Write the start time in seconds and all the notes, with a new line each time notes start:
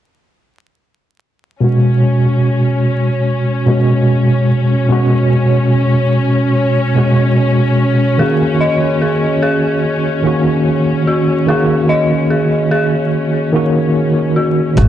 1.60 B2 G#3 C#4 F#4
3.66 B2 G#3 F#4
4.89 B2 G#3 F#4
6.95 B2 G#3 F#4
8.18 D#3 A#3 F#4 G#4
8.61 D#5
9.02 G#4
9.42 G#4
10.24 D#3 A#3 F#4
11.07 F#4
11.47 D#3 A#3 F#4 G#4
11.89 D#5
12.30 G#4
12.71 G#4
13.52 D#3 A#3 F#4
14.36 F#4
14.76 G#1 B2 G#3 F#4 G#4, kick, closed hi-hat